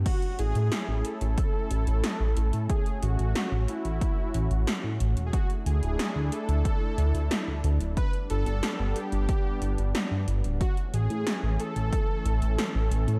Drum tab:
CC |x---------------|----------------|----------------|----------------|
HH |xxxxx-xxx-xxx-xx|xxxxx-xxx-xxx-xx|xxxxx-xxx-xxx-xx|xxxxx-xxx-xxx-xx|
SD |----o-------o---|----o-------o---|----o-------o---|----o-------o---|
BD |o-------o-------|o-------o-------|o-------o-------|o-------o-------|

CC |----------------|
HH |xxxxx-xxx-xxx-xx|
SD |----o-------o---|
BD |o-------o-------|